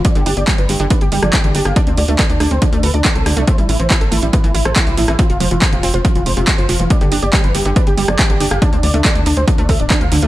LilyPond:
<<
  \new Staff \with { instrumentName = "Supersaw synth" } { \time 4/4 \key g \mixolydian \tempo 4 = 140 d''16 g'16 g'16 d''16 g'16 b'16 g'16 g'16 b'16 g'16 g'16 d''16 g'16 g'16 g'16 f''16 | d'16 d'16 d''16 d'16 d''16 d'16 d'16 c''16 d'16 d'16 b'16 d'16 r16 a'16 d'16 d'16 | c''16 e'16 e'16 c''16 e'16 a'16 e'16 e'16 b'16 e'16 e'16 c''16 e'16 e'16 e'16 e''16 | f'16 f'16 c''16 f'16 c''16 f'16 f'16 c''16 f'16 f'16 c''16 f'16 f'16 c''16 f'16 f'16 |
d''16 g'16 g'16 d''16 g'16 b'16 g'16 g'16 b'16 g'16 g'16 d''16 g'16 g'16 g'16 f''16 | d'16 d'16 d''16 d'16 d''16 d'16 d'16 c''16 d'16 d'16 e''16 d'16 d'16 f''16 d'16 d'16 | }
  \new Staff \with { instrumentName = "Synth arpeggio sound" } { \time 4/4 \key g \mixolydian g,16 d16 d'16 g'16 g16 f16 g,16 d16 d'16 g'16 g16 f16 g,16 d16 d'16 g'16 | d'16 c'16 d16 a16 a'16 d''16 d'16 c'16 d16 a16 a'16 d''16 d'16 c'16 d16 a16 | a16 g16 a,16 e16 e'16 a'16 a16 g16 a,16 e16 e'16 a'16 a16 g16 a,16 e16 | c'16 f'16 f16 e16 f,16 c16 c'16 f'16 f16 e16 f,16 c16 c'16 f'16 f16 e16 |
g,16 d16 d'16 g'16 g16 f16 g,16 d16 d'16 g'16 g16 f16 g,16 d16 d'16 g'16 | d'16 c'16 d16 a16 a'16 d''16 d'16 c'16 d16 a16 a'16 d''16 d'16 c'16 d16 a16 | }
  \new Staff \with { instrumentName = "Analog synth bass" } { \clef bass \time 4/4 \key g \mixolydian r16 g,,16 g,,16 g,,16 r16 g,,16 g,,16 g,,16 r16 g,,16 g,,16 g,,16 r16 a,,16 g,,16 g,,16 | r16 d,16 d,16 d,16 r16 d,16 d,16 d,16 r16 d,16 d,16 d,16 r16 c,16 d,16 c,16 | r16 a,,16 a,,16 a,,16 r16 a,,16 a,,16 a,,16 r16 a,,16 a,,16 a,,16 r16 b,,16 a,,16 a,,16 | r16 f,,16 f,,16 f,,16 r16 f,,16 f,,16 f,,16 r16 f,,16 f,,16 f,,16 r16 g,,16 f,,16 f,,16 |
r16 g,,16 g,,16 g,,16 r16 g,,16 g,,16 g,,16 r16 g,,16 g,,16 g,,16 r16 a,,16 g,,16 g,,16 | r16 d,16 d,16 d,16 r16 d,16 d,16 d,16 r16 d,16 d,16 d,,16 r16 d,16 d,16 d,16 | }
  \new DrumStaff \with { instrumentName = "Drums" } \drummode { \time 4/4 <hh bd>16 hh16 hho16 hh16 <hc hh bd>16 hh16 hho16 hh16 <hh bd>16 hh16 hho16 <hh ss>16 <hc hh bd>16 hh16 hho16 <hh ss>16 | <hh bd>16 hh16 hho16 hh16 <hc hh bd>16 hh16 <hho ss>16 hh16 <hh bd>16 hh16 hho16 hh16 <hc hh bd>16 hh16 <hho ss>16 hh16 | <hh bd>16 hh16 hho16 hh16 <hc hh bd>16 hh16 hho16 hh16 <hh bd>16 hh16 hho16 <hh ss>16 <hc hh bd>16 hh16 hho16 <hh ss>16 | <hh bd>16 hh16 hho16 hh16 <hc hh bd>16 hh16 hho16 hh16 <hh bd>16 hh16 hho16 hh16 <hc hh bd>16 hh16 hho16 hh16 |
<hh bd>16 hh16 hho16 hh16 <hc hh bd>16 hh16 hho16 hh16 <hh bd>16 hh16 hho16 ss16 <hc hh bd>16 hh16 hho16 <hh ss>16 | <hh bd>16 hh16 hho16 hh16 <hc hh bd>16 hh16 hho16 hh16 <hh bd>16 hh16 <hho bd>16 hh16 <hc hh bd>16 hh16 hho16 hh16 | }
>>